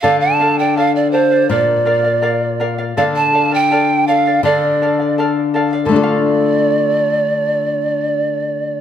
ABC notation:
X:1
M:2/4
L:1/16
Q:1/4=82
K:Dm
V:1 name="Pan flute"
f a2 g f d c2 | d6 z2 | f a2 g3 f2 | d4 z4 |
d8- | d8 |]
V:2 name="Charango"
[Adf]2 [Adf] [df] [Adf]2 [Adf] [df] | [Bdf]2 [Bdf] [df] [Bdf]2 [Bdf] [df] | [Adf]2 [Adf] [df] [Adf]2 [Adf] [df] | [Adf]2 [Adf] [df] [Adf]2 [Adf] [df] |
[Adf]8- | [Adf]8 |]
V:3 name="Nylon-string guitar" clef=bass
D,8 | B,,8 | D,8 | D,8 |
[D,A,DFA]8- | [D,A,DFA]8 |]